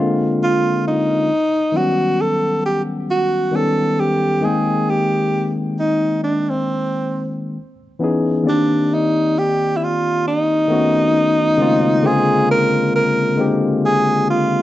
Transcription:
Already playing: D3 G#3 A#3 C4 F4
0.43 F4
0.88 D#4
1.72 D#3 F#3 B3 C#4
1.76 G3 F#4 F#5
2.21 A4
2.66 G4
3.11 F#4
3.51 D#3 G3 B3 C#4
3.56 A4
4.00 G4
4.41 D#3 G#3 A#3 C4 G#4
4.46 G5
4.90 G4
5.79 D#4
6.24 D4
6.50 C4
7.99 E3 B3 C#4 D#4
8.04 G#4
8.44 D#3 A#3 C4 D5
8.48 D4 G4
8.94 D#4
9.39 G4
9.77 E4
9.84 F4
10.27 D#4
10.68 D#3 A3 B3 C#4
10.72 F#4
11.57 C#3 G#3 A#3 C4
11.62 F4
12.02 D3 G#3 A#3 C4
12.06 F4 G#4
12.51 A#4
12.96 A#4
13.36 D3 G#3 A#3 C4
13.41 G4
13.86 G#4
14.30 F4

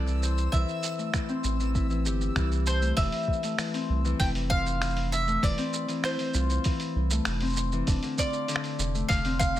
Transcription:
Already playing: C2 C4 E4 A4 C5 D5 E6
0.06 E3, shaker
0.22 C5, shaker
0.38 shaker
0.52 C2 E3 E5, kick, shaker
0.68 shaker
0.83 shaker
0.98 A3, shaker
1.14 E3, finger snap, kick, shaker
1.29 C4, shaker
1.44 A1, shaker
1.60 E3, shaker
1.75 E4, kick, shaker
1.90 E3, shaker
2.05 G1 G4, shaker
2.21 shaker
2.36 C2 E3, finger snap, kick, shaker
2.52 shaker
2.66 C5, shaker
2.82 A3, shaker
2.97 F1 E3 E5, kick, open hi-hat, shaker
3.12 open hi-hat, shaker
3.23 shaker
3.28 kick
3.33 shaker
3.43 A3, open hi-hat, shaker
3.58 E3, finger snap, open hi-hat, shaker
3.74 C4, open hi-hat, shaker
3.90 C2
4.05 E3, shaker
4.20 F1 E4 G5, kick, open hi-hat, shaker
4.35 E3, open hi-hat, shaker
4.50 F4 F5, kick
4.66 shaker
4.82 E3, finger snap, open hi-hat, shaker
4.90 shaker
4.97 open hi-hat
5.12 E5, shaker
5.27 A3, shaker
5.43 F1 E3 D5, kick, open hi-hat, shaker
5.58 C4, open hi-hat, shaker
5.73 shaker
5.88 E3, open hi-hat, shaker
6.03 E4 C5, finger snap, open hi-hat, shaker
6.19 E3, open hi-hat, shaker
6.34 C2 F4, shaker
6.50 shaker
6.64 E3, kick, open hi-hat, shaker
6.80 open hi-hat, shaker
6.96 C2
7.10 A3, shaker
7.25 F1 E3, finger snap, open hi-hat, shaker
7.41 C4, open hi-hat, shaker
7.44 shaker
7.47 shaker
7.49 shaker
7.52 shaker
7.54 shaker
7.56 shaker
7.72 E3, shaker
7.87 F1 D4, kick, open hi-hat, shaker
8.03 D3, open hi-hat, shaker
8.18 F4 D5, kick, shaker
8.33 shaker
8.48 D3, open hi-hat, shaker
8.56 finger snap
8.64 open hi-hat, shaker
8.79 F1, shaker
8.95 A3, shaker
9.09 F1 D3 F5, kick, open hi-hat, shaker
9.25 C4, open hi-hat, shaker
9.39 F5, kick, shaker
9.56 D3, shaker

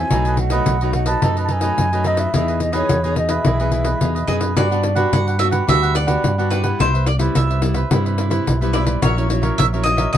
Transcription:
Already playing: A4 G#5
0.10 B1 B2 F#3 A3 D#4 A4 B4 D#5, pandeiro
0.25 A4 B4 D#5, pandeiro
0.34 G#5, pandeiro
0.38 F#5, muted cavaquinho stroke
0.50 F#3 A3 D#4 A4 B4 D#5, pandeiro
0.66 B1 F#2, pandeiro
0.81 F#3 A3 D#4 A4 B4 D#5, pandeiro
0.93 F#5, muted cavaquinho stroke, pandeiro
1.06 A4 B4 D#5 A5, pandeiro
1.22 F#2 B2 F#3 A3 D#4 A4 B4 D#5, pandeiro
1.37 A4 B4 D#5, pandeiro
1.44 A5
1.48 D#4 A4 B4 D#5 G#5, pandeiro
1.61 F#3 A3 D#4 A4 B4 D#5, pandeiro
1.78 F#2, pandeiro
1.93 F#3 A3 D#4 A4 B4 D#5, pandeiro
2.04 D#4 A4 B4 D#5, pandeiro
2.17 A4 B4 D#5 E5, pandeiro
2.33 E2 E3 B3 D#4 E4 G#4 B4 D#5, pandeiro
2.48 G#4 B4 D#5, pandeiro
2.60 D#5, muted cavaquinho stroke, pandeiro
2.72 B3 D#4 G#4 B4 C#5 D#5, pandeiro
2.89 E2 B2, pandeiro
3.03 B3 D#4 G#4 B4 D#5, pandeiro
3.16 D#5, muted cavaquinho stroke, pandeiro
3.29 G#4 B4 D#5 E5, pandeiro
3.45 B1 E3 E4 G#4 B4 D#5, pandeiro
3.59 B3 G#4 B4 D#5, pandeiro
3.71 E4 G#4 B4 D#5, pandeiro
3.84 G#4 B4 D#5, pandeiro
4.01 E2 B2 B3 D#4 G#4, pandeiro
4.15 G#4 B4 D#5, pandeiro
4.27 F#2 B3 D#4 E4 G#4 B4 D#5, pandeiro
4.40 G#4 B4 D#5, pandeiro
4.56 G2 G3 B3 D4 F#4 G4 B4 D5 F#5, pandeiro
4.71 B3 D4 F#4 G4 B4 F#5, pandeiro
4.83 muted cavaquinho stroke, pandeiro
4.95 B3 D4 F#4 G4 B4 F#5, pandeiro
5.12 G2 D3 F#5, pandeiro
5.27 G4 B4 F#5, pandeiro
5.39 B3 D4 F#4 E5, muted cavaquinho stroke, pandeiro
5.51 G4 B4 F#5, pandeiro
5.67 D2 G3 B3 D4 F#4 G4 B4 E5 F#5, pandeiro
5.82 G4 B4 F#5, pandeiro
5.95 D4 G4 B4 D5 F#5, pandeiro
6.07 B3 D4 F#4 G4 B4 F#5, pandeiro
6.23 G2 D3, pandeiro
6.38 B3 D4 F#4 G4 B4 F#5, pandeiro
6.50 D4 G4 B4 F#5, pandeiro
6.63 G3 B3 E4 G4 B4 F#5, pandeiro
6.79 C2 C3 E4 B4 C5 E5, pandeiro
6.94 B4 C5 E5, pandeiro
7.06 D5, pandeiro
7.19 G3 B3 E4 B4 C5 E5, pandeiro
7.35 C2 G2 E5, pandeiro
7.50 B4 C5 E5, pandeiro
7.62 G3 B3 E4, muted cavaquinho stroke, pandeiro
7.74 B4 C5 E5, pandeiro
7.90 G2 C3 G3 B3 E4 B4 C5 E5, pandeiro
8.06 B4 C5 E5, pandeiro
8.18 E4 B4 C5 E5, pandeiro
8.30 G3 B3 E4 B4 C5 E5, pandeiro
8.47 B1 G2, pandeiro
8.61 G3 B3 E4 B4 C5 E5, pandeiro
8.73 E4 B4 C5 D5 E5, pandeiro
8.85 B4 C5 E5, pandeiro
9.02 A#1 A#2 F#3 C#4 E4 F#4 A#4 C#5 E5, pandeiro
9.17 F#3 C#4 E4 A#4 C#5 E5, pandeiro
9.29 F#3 C#4 E4, muted cavaquinho stroke, pandeiro
9.42 A#4 C#5 E5, pandeiro
9.58 A#1 A#2 E5, pandeiro
9.73 F#3 C#4 E4 A#4 C#5 E5, pandeiro
9.83 D#5, muted cavaquinho stroke, pandeiro
9.97 A#4 C#5 E5, pandeiro
10.13 C#2 F#4 A#4 D#5

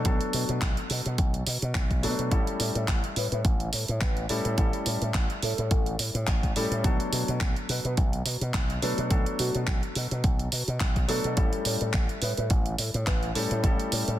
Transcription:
0.05 B1 F#3 A3 B3 D4 A4, kick, closed hi-hat
0.21 closed hi-hat
0.33 B2, open hi-hat
0.49 B2, closed hi-hat
0.62 B1, kick, clap, closed hi-hat
0.77 closed hi-hat
0.90 B2, open hi-hat
1.06 B2, closed hi-hat
1.18 B1, kick, closed hi-hat
1.34 closed hi-hat
1.47 B2, open hi-hat
1.62 B2, closed hi-hat
1.75 B1, kick, clap, closed hi-hat
1.91 kick, closed hi-hat
2.03 B2 F#3 A3 B3 D4 A4, open hi-hat
2.19 B2, closed hi-hat
2.30 A1 G3 A3 C#4 E4 A4, kick, closed hi-hat
2.47 closed hi-hat
2.60 A2, open hi-hat
2.75 A2, closed hi-hat
2.88 A1, kick, clap, closed hi-hat
3.04 closed hi-hat
3.16 A2 B4, open hi-hat
3.32 A2 B4, closed hi-hat
3.45 A1, kick, closed hi-hat
3.60 closed hi-hat
3.73 A2, open hi-hat
3.88 A2, closed hi-hat
4.01 A1 B4, kick, clap, closed hi-hat
4.17 closed hi-hat
4.29 A2 G3 A3 C#4 E4 A4, open hi-hat
4.45 A2, closed hi-hat
4.57 A1 G3 A3 C#4 E4 A4, kick, closed hi-hat
4.73 closed hi-hat
4.86 A2, open hi-hat
5.02 A2, closed hi-hat
5.14 A1, kick, clap, closed hi-hat
5.30 closed hi-hat
5.43 A2 A4, open hi-hat
5.58 A2, closed hi-hat
5.71 A1, kick, closed hi-hat
5.86 closed hi-hat
5.99 A2, open hi-hat
6.15 A2, closed hi-hat
6.27 A1, kick, clap, closed hi-hat
6.43 kick, closed hi-hat
6.56 A2 G3 A3 C#4 E4 A4, open hi-hat
6.71 A2, closed hi-hat
6.83 B1 F#3 A3 B3 D4 A4, kick, closed hi-hat
7.00 closed hi-hat
7.13 B2, open hi-hat
7.28 B2, closed hi-hat
7.41 B1, kick, clap, closed hi-hat
7.56 closed hi-hat
7.69 B2 B4, open hi-hat
7.85 B2 B4, closed hi-hat
7.97 B1, kick, closed hi-hat
8.13 closed hi-hat
8.26 B2, open hi-hat
8.41 B2, closed hi-hat
8.54 B1, kick, clap, closed hi-hat
8.70 closed hi-hat
8.82 B2 F#3 A3 B3 D4 A4 B4, open hi-hat
8.98 B2, closed hi-hat
9.10 B1 F#3 A3 B3 D4 A4, kick, closed hi-hat
9.26 closed hi-hat
9.39 B2 F#4, open hi-hat
9.55 B2, closed hi-hat
9.67 B1, kick, clap, closed hi-hat
9.83 closed hi-hat
9.95 B2, open hi-hat
10.11 B2, closed hi-hat
10.24 B1, kick, closed hi-hat
10.39 closed hi-hat
10.52 B2, open hi-hat
10.68 B2, closed hi-hat
10.80 B1, kick, clap, closed hi-hat
10.96 kick, closed hi-hat
11.08 B2 F#3 A3 B3 D4 A4, open hi-hat
11.24 B2 A4, closed hi-hat
11.36 A1 G3 A3 C#4 E4 A4, kick, closed hi-hat
11.53 closed hi-hat
11.65 A2, open hi-hat
11.81 A2, closed hi-hat
11.93 A1, kick, clap, closed hi-hat
12.09 closed hi-hat
12.22 A2 B4, open hi-hat
12.37 A2 B4, closed hi-hat
12.50 A1, kick, closed hi-hat
12.66 closed hi-hat
12.78 A2, open hi-hat
12.94 A2, closed hi-hat
13.06 A1 B4, kick, clap, closed hi-hat
13.23 closed hi-hat
13.35 A2 G3 A3 C#4 E4 A4, open hi-hat
13.51 A2, closed hi-hat
13.63 A1 G3 A3 C#4 E4 A4, kick, closed hi-hat
13.80 closed hi-hat
13.92 A2, open hi-hat
14.08 A2, closed hi-hat

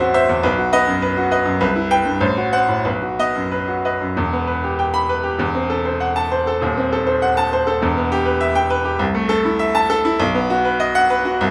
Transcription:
Already playing: A1 E2 C4 C5 E5
0.00 F#4
0.14 C5 E5
0.29 E2
0.43 B1 B4
0.58 F#4
0.72 B3 B4 D#5
0.87 F#2
1.02 B4
1.17 F#4
1.31 B4 D#5
1.45 F#2
1.61 C2 B4
1.75 E4
1.91 B4 G5
2.05 G2
2.21 A1 C5
2.37 F#4
2.52 C5 F#5
2.68 A2
2.85 B1 B4
3.02 F#4
3.19 B3 B4 D#5
3.35 F#2
3.51 B4
3.68 F#4
3.85 B4 D#5
4.01 F#2
4.16 E1 E2
4.33 B3
4.47 B4
4.64 G4
4.79 G5
4.94 B5
5.09 B4
5.23 G4
5.38 E1 E2
5.54 C4
5.70 A4
5.85 C5
6.00 F#5
6.16 A5
6.32 C5
6.47 A4
6.61 D#1 D#2
6.78 C4
6.92 A4
7.07 C5
7.22 F#5
7.37 A5
7.53 C5
7.67 A4
7.81 E1 E2
7.97 B3
8.12 G4
8.26 B4
8.41 E5
8.55 G5
8.70 B4
8.85 G4
8.99 C2
9.15 A3
9.29 A4
9.45 E4
9.59 E5
9.75 A5
9.90 A4
10.05 E4
10.20 B1
10.35 B3
10.50 F#4
10.65 B4
10.80 D#5
10.95 F#5
11.10 B4
11.25 F#4
11.41 C2

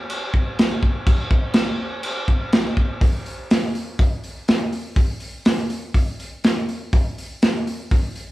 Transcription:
0.10 crash
0.34 kick
0.59 snare, crash
0.83 kick
1.07 kick, crash
1.31 kick
1.54 snare, crash
2.03 crash
2.28 kick
2.52 snare, crash
2.77 kick
3.01 kick, open hi-hat
3.26 open hi-hat
3.51 snare, open hi-hat
3.75 open hi-hat
3.99 kick, open hi-hat
4.24 open hi-hat
4.48 snare, open hi-hat
4.72 open hi-hat
4.96 kick, open hi-hat
5.20 open hi-hat
5.45 snare, open hi-hat
5.70 open hi-hat
5.94 kick, open hi-hat
6.20 open hi-hat
6.44 snare, open hi-hat
6.69 open hi-hat
6.93 kick, open hi-hat
7.18 open hi-hat
7.42 snare, open hi-hat
7.67 open hi-hat
7.91 kick, open hi-hat
8.16 open hi-hat

